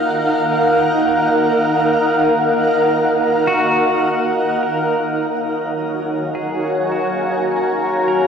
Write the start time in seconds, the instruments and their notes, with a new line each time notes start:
Already playing: ambient pad D#4 A#4 F5 F#5
3.47 pedal steel guitar F#4
4.63 ambient pad F#4, pedal steel guitar A#4
4.79 ambient pad C#5
5.48 ambient pad G#5
6.13 ambient pad A#5
6.35 pedal steel guitar G#4
6.92 pedal steel guitar F#4
8.08 pedal steel guitar A#4